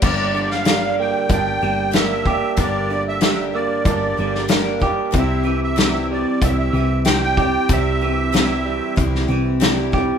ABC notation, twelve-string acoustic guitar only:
X:1
M:4/4
L:1/8
Q:1/4=94
K:Gdor
V:1 name="Twelve-string acoustic guitar"
[G,,D,G,B,DG] [G,B,DG] [G,,D,G,B,DG]2 [G,B,DG] [G,B,DG] [G,,D,G,B,DG] [G,B,DG] | [G,,D,G,B,DG] [G,B,DG] [G,,D,G,B,DG]2 [G,B,DG] [G,B,DG] [G,,D,G,B,DG] [G,B,DG] | [C,G,CEG] [CEG] [C,G,CEG]2 [G,CEG] [CEG] [C,G,CEG] [CEG] | [C,G,CEG] [CEG] [C,G,CEG]2 [G,CEG] [CEG] [C,G,CEG] [CEG] |]